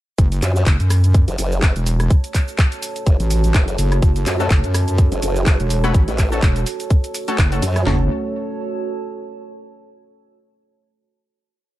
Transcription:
0.18 wobble bass F#1, analog synth pad A3 C#4 F#4 C#5, ambient pad F#4, kick, closed hi-hat, shaker
0.32 closed hi-hat, shaker
0.38 ambient pad A4, open hi-hat
0.42 wobble bass F#2, clap, shaker
0.56 shaker
0.66 wobble bass F#1, kick, clap, closed hi-hat, shaker
0.80 wobble bass F#2, ambient pad C#5, closed hi-hat, shaker
0.90 cross-stick, open hi-hat, shaker
1.04 ambient pad A5, closed hi-hat, shaker
1.14 kick, closed hi-hat, shaker
1.28 wobble bass F#1, closed hi-hat, shaker
1.38 wobble bass F#1, open hi-hat, shaker
1.52 shaker
1.62 kick, clap, closed hi-hat, shaker
1.76 wobble bass E1, closed hi-hat, shaker
1.86 open hi-hat, shaker
2.00 cross-stick, closed hi-hat, shaker
2.10 kick, closed hi-hat, shaker
2.24 closed hi-hat, shaker
2.34 kick, clap, open hi-hat, shaker
2.48 shaker
2.58 kick, clap, closed hi-hat, shaker
2.72 closed hi-hat, shaker
2.82 open hi-hat, shaker
2.96 closed hi-hat, shaker
3.06 wobble bass F#1, kick, closed hi-hat, shaker
3.20 wobble bass A1, closed hi-hat, shaker
3.30 open hi-hat, shaker
3.44 closed hi-hat, shaker
3.54 wobble bass F#1, kick, clap, closed hi-hat, shaker
3.68 closed hi-hat, shaker
3.78 wobble bass F#1, open hi-hat, shaker
3.92 cross-stick, closed hi-hat, shaker
4.02 wobble bass F#1, kick, closed hi-hat, shaker
4.16 closed hi-hat, shaker
4.26 wobble bass F#2, clap, open hi-hat, shaker
4.40 synth stab A3 C#4 F#4 A4, shaker
4.50 wobble bass F#1, kick, clap, closed hi-hat, shaker
4.64 wobble bass F#2, closed hi-hat, shaker
4.74 cross-stick, open hi-hat, shaker
4.88 closed hi-hat, shaker
4.98 kick, closed hi-hat, shaker
5.12 wobble bass F#1, closed hi-hat, shaker
5.22 wobble bass F#1, open hi-hat, shaker
5.36 shaker
5.46 kick, clap, closed hi-hat, shaker
5.60 wobble bass E1, closed hi-hat, shaker
5.70 open hi-hat, shaker
5.84 synth stab A3 C#4 F#4 B4, cross-stick, closed hi-hat, shaker
5.94 wobble bass A1, kick, closed hi-hat, shaker
6.08 wobble bass A1, closed hi-hat, shaker
6.18 kick, clap, open hi-hat, shaker
6.32 synth stab A3 C#4 F#4 A4, shaker
6.42 wobble bass E1, kick, clap, closed hi-hat, shaker
6.56 closed hi-hat, shaker
6.66 open hi-hat, shaker
6.80 closed hi-hat, shaker
6.90 kick, closed hi-hat, shaker
7.04 closed hi-hat, shaker
7.14 open hi-hat, shaker
7.28 synth stab A3 C#4 F#4 A4, closed hi-hat, shaker
7.38 wobble bass F#1, kick, clap, closed hi-hat, shaker
7.52 synth stab A3 C#4 F#4 A4, closed hi-hat, shaker
7.62 wobble bass F#2, open hi-hat, shaker
7.76 cross-stick, closed hi-hat, shaker
7.86 wobble bass F#1, synth stab A3 C#4 F#4 A4, analog synth pad A3 C#4 F#4 C#5, ambient pad F#4, snare, clap, floor tom
7.95 ambient pad A4
8.02 ambient pad C#5
8.08 ambient pad A5

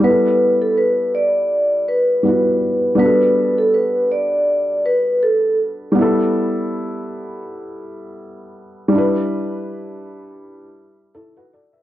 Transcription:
0.00 felt piano G3 B3
0.04 felt piano E4, vibraphone B4
0.10 felt piano A4
0.62 vibraphone A4
0.78 vibraphone B4
1.15 vibraphone D5
1.88 vibraphone B4
2.23 felt piano G3 B3 E4
2.28 felt piano F#4
2.95 felt piano G3 B3
2.99 felt piano D4 F#4, vibraphone B4
3.05 felt piano A4
3.58 vibraphone A4
3.74 vibraphone B4
4.12 vibraphone D5
4.86 vibraphone B4
5.23 vibraphone A4
5.92 felt piano G3 B3
5.99 felt piano E4 A4
8.88 felt piano G3 D4
8.95 felt piano E4 B4
11.15 felt piano E4 A4
11.37 felt piano F#4 B4
11.53 felt piano A4 D5
11.73 felt piano B4 E5

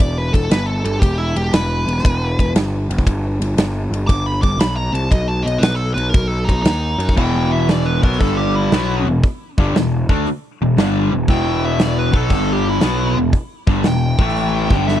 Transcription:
0.00 picked electric bass E1, lead electric guitar D5, kick, ride
0.18 lead electric guitar B4
0.33 picked electric bass E1, lead electric guitar A4, kick, ride
0.51 picked electric bass G1, lead electric guitar B4, snare, ride
0.66 lead electric guitar A4
0.84 picked electric bass G1, lead electric guitar A4, ride
0.99 picked electric bass E1, lead electric guitar G4, kick, ride
1.18 lead electric guitar E4
1.36 picked electric bass E1, lead electric guitar G4, ride
1.53 picked electric bass E1, lead electric guitar B4, snare, ride
1.87 picked electric bass E1, ride
1.98 snare
2.04 picked electric bass E1, kick, ride
2.39 picked electric bass E1, kick, ride
2.55 picked electric bass G1, snare, ride
2.89 picked electric bass F#1, ride
2.98 kick
3.06 picked electric bass G1, kick, ride
3.41 picked electric bass G1, ride
3.57 picked electric bass G1, snare, ride
3.91 picked electric bass G1, ride
4.07 picked electric bass G1, lead electric guitar D6, kick, ride
4.26 lead electric guitar B5
4.42 picked electric bass G1, lead electric guitar D6, kick, ride
4.58 picked electric bass B1, lead electric guitar B5, snare, ride
4.76 lead electric guitar A#5
4.93 picked electric bass C2, lead electric guitar A5, ride
5.11 picked electric bass B1, lead electric guitar D#5, kick, ride
5.28 lead electric guitar A5
5.43 picked electric bass B1, lead electric guitar D#5
5.47 ride
5.59 picked electric bass B1, lead electric guitar B4, ride
5.63 snare
5.76 lead electric guitar A4
5.94 picked electric bass B1, lead electric guitar B4, ride
6.09 lead electric guitar A#4
6.14 picked electric bass B1, kick, ride
6.28 lead electric guitar A4
6.45 lead electric guitar D#4
6.49 picked electric bass B1, kick, ride
6.62 picked electric bass D#2, lead electric guitar D#4, snare, ride
6.98 picked electric bass F#2, ride
7.09 kick
7.17 picked electric bass E1, overdriven electric guitar E2 B2 E3, lead electric guitar G5, kick, crash
7.52 lead electric guitar E5
7.69 lead electric guitar D5, snare, open hi-hat
7.85 lead electric guitar B4
8.02 picked electric bass B1, overdriven electric guitar B2 F#3 B3, lead electric guitar A#4, kick
8.12 snare
8.19 picked electric bass G1, overdriven electric guitar G2 D3 G3, lead electric guitar A4, kick, open hi-hat
8.37 lead electric guitar G4
8.55 lead electric guitar E4
8.72 picked electric bass B1, overdriven electric guitar B2 F#3 B3, snare, open hi-hat
9.04 picked electric bass E1, overdriven electric guitar E2 B2
9.24 kick, open hi-hat
9.58 picked electric bass G1, overdriven electric guitar G2 D3 G3, kick
9.74 picked electric bass E1, overdriven electric guitar E2 B2, snare, open hi-hat
10.09 picked electric bass D2, overdriven electric guitar D3 A3 D4, kick
10.26 muted picked electric bass stroke, muted overdriven electric guitar stroke, open hi-hat
10.61 picked electric bass E1, overdriven electric guitar E2 B2
10.78 picked electric bass G1, overdriven electric guitar G2 D3 G3, snare, open hi-hat
11.12 picked electric bass E1, overdriven electric guitar E2 B2
11.28 picked electric bass E1, overdriven electric guitar E2 B2 E3, lead electric guitar G5, kick, open hi-hat
11.65 lead electric guitar E5
11.79 lead electric guitar D5, snare, open hi-hat
11.99 lead electric guitar B4
12.12 picked electric bass B1, overdriven electric guitar B2 F#3 B3, lead electric guitar A4, kick
12.30 picked electric bass G1, overdriven electric guitar G2 D3 G3, kick, open hi-hat
12.34 lead electric guitar A4
12.52 lead electric guitar G4
12.69 lead electric guitar E4
12.81 picked electric bass B1, overdriven electric guitar B2 F#3 B3, snare, open hi-hat
13.15 picked electric bass E1, overdriven electric guitar E2 B2
13.33 kick, open hi-hat
13.67 picked electric bass G1, overdriven electric guitar G2 D3 G3, kick
13.84 picked electric bass E1, overdriven electric guitar E2 B2, lead electric guitar G5, snare, open hi-hat
14.19 picked electric bass A1, overdriven electric guitar A2 E3 A3, kick
14.28 snare
14.36 open hi-hat
14.70 picked electric bass G1, overdriven electric guitar G2 D3 G3, kick
14.88 lead electric guitar E5, snare

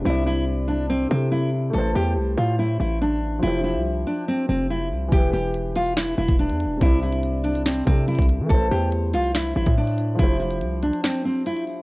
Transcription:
0.01 808-style bass C2, grand piano C3 C4
0.06 nylon-string guitar E4, grand piano E4 D5
0.26 nylon-string guitar E4
0.68 nylon-string guitar D4
0.90 nylon-string guitar C4
1.09 grand piano C3 C4 E4, 808-style bass C3, nylon-string guitar C4
1.13 grand piano A4
1.32 nylon-string guitar E4
1.70 grand piano A3 E4, nylon-string guitar A4
1.74 808-style bass A1, grand piano B4
1.78 grand piano C5
1.95 808-style bass E2, nylon-string guitar G4
2.16 808-style bass C2
2.38 808-style bass A2, nylon-string guitar F4
2.59 nylon-string guitar E4
2.80 808-style bass A1, nylon-string guitar E4
3.02 nylon-string guitar D4
3.39 grand piano F3 F4, nylon-string guitar E4
3.43 808-style bass F1, grand piano G4
3.47 grand piano C5
3.64 nylon-string guitar E4
3.75 808-style bass C2
4.07 nylon-string guitar D4
4.28 nylon-string guitar C4
4.49 808-style bass F1, nylon-string guitar C4
4.70 nylon-string guitar E4
4.91 808-style bass C2
5.08 808-style bass E1, grand piano E3 E4, kick, closed hi-hat
5.12 nylon-string guitar G4, grand piano G4
5.17 grand piano B4
5.33 808-style bass E1, nylon-string guitar G4
5.54 closed hi-hat
5.76 nylon-string guitar F4, closed hi-hat
5.86 closed hi-hat
5.97 nylon-string guitar E4, snare
6.18 808-style bass E1, nylon-string guitar E4
6.28 808-style bass E1, kick, closed hi-hat
6.39 nylon-string guitar D4
6.50 808-style bass E2, closed hi-hat
6.60 closed hi-hat
6.65 808-style bass E1
6.77 808-style bass C2, grand piano C3 C4, kick, closed hi-hat
6.82 nylon-string guitar E4, grand piano E4 D5
7.02 nylon-string guitar E4
7.13 closed hi-hat
7.23 closed hi-hat
7.44 nylon-string guitar D4, closed hi-hat
7.55 closed hi-hat
7.66 nylon-string guitar C4, snare
7.85 grand piano C3 C4 E4, 808-style bass C3, nylon-string guitar C4, kick
7.89 grand piano A4
8.08 nylon-string guitar E4, closed hi-hat
8.15 808-style bass C2, kick, closed hi-hat
8.22 closed hi-hat
8.29 closed hi-hat
8.40 808-style bass E3
8.46 grand piano A3 E4, nylon-string guitar A4
8.50 808-style bass A1, grand piano B4 C5, kick, closed hi-hat
8.71 808-style bass E2, nylon-string guitar G4
8.92 closed hi-hat
9.14 808-style bass C2, nylon-string guitar F4, closed hi-hat
9.24 closed hi-hat
9.35 nylon-string guitar E4, snare
9.56 808-style bass A1, nylon-string guitar E4
9.66 808-style bass A2, kick, closed hi-hat
9.78 nylon-string guitar D4
9.88 closed hi-hat
9.98 closed hi-hat
10.15 grand piano F3 F4, nylon-string guitar E4
10.19 808-style bass F1, grand piano G4, kick, closed hi-hat
10.23 grand piano C5
10.40 nylon-string guitar E4
10.51 closed hi-hat
10.61 808-style bass C2, closed hi-hat
10.83 nylon-string guitar D4, closed hi-hat
10.93 closed hi-hat
11.04 nylon-string guitar C4, snare
11.25 nylon-string guitar C4
11.46 nylon-string guitar E4, closed hi-hat
11.57 closed hi-hat
11.67 open hi-hat

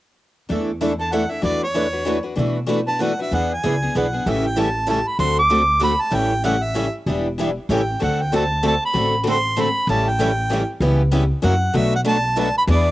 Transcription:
0.49 upright bass E2, steel-string acoustic guitar E3 A3 D4 E4 A4
0.81 steel-string acoustic guitar E3 A3 D4 E4 A4
0.99 steel-string acoustic guitar D4 E4 A4, harmonica A5
1.12 steel-string acoustic guitar E3 A3 D4 E4 A4, harmonica F#5
1.30 steel-string acoustic guitar D4 E4 A4, harmonica E5
1.42 upright bass E2, steel-string acoustic guitar E3 A3 D4 F#4 B4, harmonica D5
1.63 harmonica C#5
1.74 steel-string acoustic guitar E3 A3 D4 F#4 B4
1.93 steel-string acoustic guitar D4 F#4 B4
2.05 steel-string acoustic guitar E3 A3 D4 F#4 B4
2.23 steel-string acoustic guitar D4 F#4 B4
2.36 upright bass B2, steel-string acoustic guitar E3 A3 D4 F#4 B4
2.66 steel-string acoustic guitar E3 A3 D4 F#4 B4
2.87 steel-string acoustic guitar D4 F#4 B4, harmonica A5
3.01 steel-string acoustic guitar E3 A3 D4 F#4 B4, harmonica F#5
3.19 steel-string acoustic guitar D4 F#4 B4, harmonica E5
3.31 upright bass E2, steel-string acoustic guitar E3 B3 D4 G#4 B4, harmonica F#5
3.53 harmonica G#5
3.63 upright bass C#2, steel-string acoustic guitar E3 B3 D4 G#4 B4
3.82 steel-string acoustic guitar B3 D4 G#4
3.95 upright bass B1, steel-string acoustic guitar E3 B3 D4 G#4 B4, harmonica F#5
4.13 steel-string acoustic guitar B3 D4 G#4
4.26 upright bass A1, steel-string acoustic guitar C#3 E3 G3 A3 C#4 E4 G4 A4, harmonica E5
4.46 harmonica G5
4.56 steel-string acoustic guitar C#3 E3 G3 A3 C#4 E4 G4 A4, harmonica A5
4.87 steel-string acoustic guitar C#3 E3 G3 A3 C#4 E4 G4 A4, harmonica A5
5.07 harmonica B5
5.19 upright bass D2, steel-string acoustic guitar D3 A3 C4 F#4 A4, harmonica C6
5.39 harmonica D6
5.50 steel-string acoustic guitar D3 A3 C4 F#4 A4
5.81 steel-string acoustic guitar D3 A3 C4 F#4 A4, harmonica B5
6.01 harmonica A5
6.11 upright bass A1, steel-string acoustic guitar C#3 E3 G3 A3 C#4 E4 G4 A4, harmonica G5
6.44 steel-string acoustic guitar C#3 E3 G3 A3 C#4 E4 G4 A4, harmonica F#5
6.63 harmonica E5
6.74 steel-string acoustic guitar C#3 E3 G3 A3 C#4 E4 G4 A4
7.06 upright bass E1, steel-string acoustic guitar E3 G3 B3 D4 E4 G4 B4
7.38 steel-string acoustic guitar E3 G3 B3 D4 E4 G4 B4
7.69 upright bass A1, steel-string acoustic guitar C#3 E3 G3 A3 C#4 E4 G4 A4, harmonica G5
7.99 upright bass D2, steel-string acoustic guitar D3 A3 C4 F#4 A4, harmonica F#5
8.21 harmonica G5
8.32 steel-string acoustic guitar D3 A3 C4 F#4 A4, harmonica A5
8.63 steel-string acoustic guitar D3 A3 C4 F#4 A4
8.68 harmonica A5
8.85 harmonica B5
8.93 upright bass A1, steel-string acoustic guitar D3 A3 C4 F#4 A4
9.23 steel-string acoustic guitar D3 A3 C4 F#4 A4
9.28 steel-string acoustic guitar F#4 A4, harmonica C6
9.56 steel-string acoustic guitar D3 A3 C4 F#4 A4
9.61 harmonica B5
9.87 upright bass A1, steel-string acoustic guitar C#3 E3 G3 A3 C#4 E4 G4 A4, harmonica A5
10.09 harmonica G5
10.19 steel-string acoustic guitar C#3 E3 G3 A3 C#4 E4 G4 A4
10.50 steel-string acoustic guitar C#3 E3 G3 A3 C#4 E4 G4 A4
10.80 upright bass C#2, steel-string acoustic guitar C#3 E3 G3 B3 C#4 E4 G4 B4
11.11 steel-string acoustic guitar C#3 E3 G3 B3 C#4 E4 G4 B4
11.42 upright bass F#2, steel-string acoustic guitar C#3 E3 F#3 A#3 C#4 E4 F#4 A#4, harmonica F#5
11.73 upright bass B1, steel-string acoustic guitar B2 F#3 A3 D4 F#4 B4, harmonica E5
11.95 harmonica F#5
12.05 steel-string acoustic guitar B2 F#3 A3 D4 F#4 B4, harmonica A5
12.37 steel-string acoustic guitar B2 F#3 A3 D4 F#4 B4, harmonica A5
12.58 harmonica B5
12.67 upright bass E2, steel-string acoustic guitar E3 B3 D4 G#4 B4, harmonica D5

